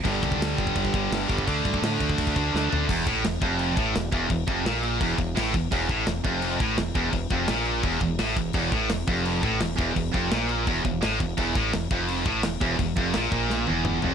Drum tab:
CC |x-x-x-x-x-x-x-x-|x-x-x-x-x-x-----|x-x-x-x-x-x-x-x-|x-x-x-x-x-x-x-x-|
SD |----o-------o---|----o-------o---|----o-------o---|----o-------o---|
T1 |----------------|----------------|----------------|----------------|
T2 |----------------|----------------|----------------|----------------|
FT |----------------|--------------o-|----------------|----------------|
BD |o-oo--ooooo---oo|o-oo--ooooo-----|o-o---o---o---o-|o-o-----o-o---o-|

CC |x-x-x-x-x-x-x-x-|x-x-x-x-x-x-x-x-|x-x-x-x-x-x-x-x-|x-x-x-x-x-x-x-x-|
SD |----o-------o---|----o-------o---|----o-------o---|----o-------o---|
T1 |----------------|----------------|----------------|----------------|
T2 |----------------|----------------|----------------|----------------|
FT |----------------|----------------|----------------|----------------|
BD |o-o---o---o---o-|o-o-----o-o---o-|o-o---o---o---o-|o-o-----o-o---o-|

CC |x-x-x-x-x-x-x-x-|x-x-x-x---------|
SD |----o-------o---|----o---o-------|
T1 |----------------|----------o-----|
T2 |----------------|------------o---|
FT |----------------|--------------o-|
BD |o-o---o---o---o-|o-o---o---------|